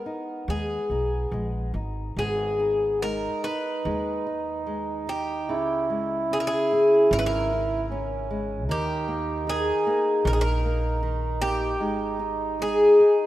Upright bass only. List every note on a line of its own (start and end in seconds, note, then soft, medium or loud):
0.48 0.76 D#2 medium
0.90 1.29 B1 medium
1.32 1.71 A#1 medium
1.74 2.13 G#1 medium
2.17 3.26 G#1 medium
3.85 5.47 D#2 medium
5.47 6.53 C#2 medium
7.11 8.68 G#1 loud
8.68 9.70 D#2 medium
10.25 11.80 A#1 loud
11.80 12.84 G#1 medium